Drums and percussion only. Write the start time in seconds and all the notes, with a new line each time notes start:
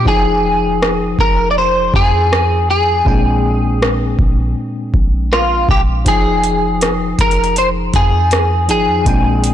0.06 kick
0.82 cross-stick
1.19 kick
1.94 kick
2.33 cross-stick
3.06 kick
3.82 cross-stick
4.19 kick
4.94 kick
5.33 cross-stick
5.69 kick
6.06 kick, closed hi-hat
6.44 closed hi-hat
6.81 cross-stick, closed hi-hat
7.19 kick, closed hi-hat
7.31 closed hi-hat
7.44 closed hi-hat
7.56 closed hi-hat
7.94 kick, closed hi-hat
8.31 cross-stick, closed hi-hat
8.69 closed hi-hat
9.06 kick, closed hi-hat
9.44 closed hi-hat